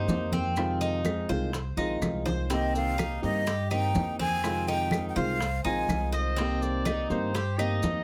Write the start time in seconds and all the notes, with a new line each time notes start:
Already playing: D#4 C5
0.08 F2 D#3 A#3 C4 G4, high bongo, low bongo, high conga, maracas
0.32 C4, high bongo, high conga, maracas
0.56 C3 D#3 G#3 C4 F4, high bongo, high conga, claves, maracas
0.81 D#4, high bongo, high conga, maracas
1.04 D#3 G#3 C4 F4, high bongo, high conga, claves, maracas
1.29 C2 D#3 G#3 C4 F4 C5, high bongo, high conga, maracas
1.53 muted nylon-string guitar stroke, high bongo, high conga, maracas
1.77 A#1 D#3 G#3 C4 D#4 F4, high conga
2.02 C2 D#3 G#3 C4 F4, high bongo, high conga, claves, maracas
2.26 C5, low bongo, high conga, maracas
2.50 C3 D#3 A#3 C4 G4 D#5, high bongo, high conga, maracas
2.75 F5, high bongo, high conga, maracas
2.97 D#3 A#3 D#4 G4, high bongo, high conga, claves, maracas
3.22 G2 D#3 A#3 C4 G4 D#5, high bongo, high conga, maracas
3.47 G4, muted nylon-string guitar stroke, high bongo, high conga, maracas
3.71 D#3 A#3 C4 D#4 G4 G5, high conga, claves, maracas
3.95 F2 D#3 A#3 C4 G4, high bongo, low bongo, high conga, maracas
4.19 C4 G#5, high bongo, high conga, maracas
4.43 C3 D#3 G#3 C4 F4, high bongo, high conga, claves, maracas
4.67 D#4 G5, high bongo, high conga, maracas
4.91 D#3 G#3 C4 F4, high bongo, high conga, claves, maracas
5.09 G5
5.16 C2 D#3 G#3 C4 F4 C5 F5, high bongo, high conga, maracas
5.41 muted nylon-string guitar stroke, high bongo, high conga, maracas
5.64 A#1 D#3 G#3 C4 D#4 F4 G#5, high conga
5.89 C2 D#3 G#3 C4 F4, high bongo, low bongo, high conga, claves, maracas
6.12 C5 D#5, high bongo, maracas
6.36 C3 D#3 A#3 C4 G4, high bongo, high conga, maracas
6.62 D5, high bongo, high conga, maracas
6.85 D#3 A#3 C4 D#4 G4, high bongo, high conga, claves, maracas
7.10 G2 D#3 A#3 C4 G4 C5, high bongo, high conga, maracas
7.35 G4, muted nylon-string guitar stroke, high bongo, high conga, maracas
7.58 D#3 A#3 C4 D#4 G4 D#5, high conga, claves, maracas
7.83 F2 D#3 A#3 C4 G4, high bongo, low bongo, high conga, maracas